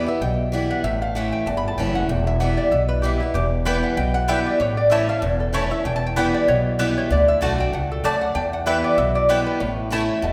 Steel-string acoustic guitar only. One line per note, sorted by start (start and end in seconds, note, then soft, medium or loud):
0.00 0.19 E2 medium
0.06 0.21 B3 soft
0.06 0.20 E4 medium
0.22 0.81 B2 medium
0.52 0.82 E3 medium
0.52 0.83 G3 medium
0.52 0.83 B3 medium
0.52 0.84 E4 medium
0.84 1.44 A2 medium
1.15 1.45 E3 medium
1.15 1.46 A3 loud
1.15 1.46 C#4 medium
1.15 1.46 E4 medium
1.47 2.07 E2 medium
1.78 2.08 E3 medium
1.78 2.08 A3 medium
1.78 2.09 C#4 medium
1.78 2.09 E4 loud
2.09 2.69 E2 medium
2.40 2.70 E3 medium
2.40 2.71 G3 medium
2.40 2.71 B3 medium
2.40 2.71 E4 medium
2.72 3.32 B2 medium
3.03 3.20 E3 medium
3.03 3.20 G3 medium
3.03 3.21 B3 medium
3.03 3.19 E4 loud
3.21 3.35 B3 soft
3.21 3.34 E4 medium
3.35 3.95 E2 medium
3.65 3.96 E3 medium
3.65 3.96 G3 medium
3.65 3.96 B3 loud
3.65 3.97 E4 medium
3.97 4.57 B2 medium
4.28 4.58 E3 medium
4.28 4.59 G3 medium
4.28 4.59 B3 medium
4.28 4.59 E4 medium
4.60 5.20 A2 medium
4.90 5.07 E3 medium
4.90 5.08 A3 medium
4.90 5.08 C#4 medium
4.90 5.06 E4 loud
5.07 5.23 C#4 soft
5.07 5.21 E4 medium
5.22 5.82 E2 medium
5.53 5.70 E3 medium
5.53 5.70 A3 medium
5.53 5.71 C#4 loud
5.53 5.69 E4 medium
5.71 5.85 C#4 soft
5.71 5.84 E4 medium
5.85 6.45 E2 medium
6.16 6.46 E3 medium
6.16 6.47 G3 medium
6.16 6.47 B3 medium
6.16 6.48 E4 loud
6.48 7.08 B2 medium
6.79 7.09 E3 medium
6.79 7.09 G3 medium
6.79 7.10 B3 loud
6.79 7.10 E4 medium
7.10 7.40 D3 medium
7.41 7.58 D3 medium
7.41 7.58 A3 medium
7.41 7.59 D4 medium
7.41 7.57 F#4 loud
7.58 7.73 D4 soft
7.58 7.72 F#4 medium
7.73 8.03 G2 medium
8.04 8.34 F#2 medium
8.35 8.95 E2 medium
8.66 8.96 E3 medium
8.66 8.97 G3 medium
8.66 8.97 B3 medium
8.66 8.97 E4 medium
8.98 9.58 B2 medium
9.29 9.59 E3 medium
9.29 9.59 G3 medium
9.29 9.60 B3 medium
9.29 9.60 E4 medium
9.60 10.20 A2 medium
9.90 10.21 E3 medium
9.90 10.21 A3 medium
9.90 10.22 C#4 loud
9.90 10.22 E4 loud
10.22 10.33 B2 medium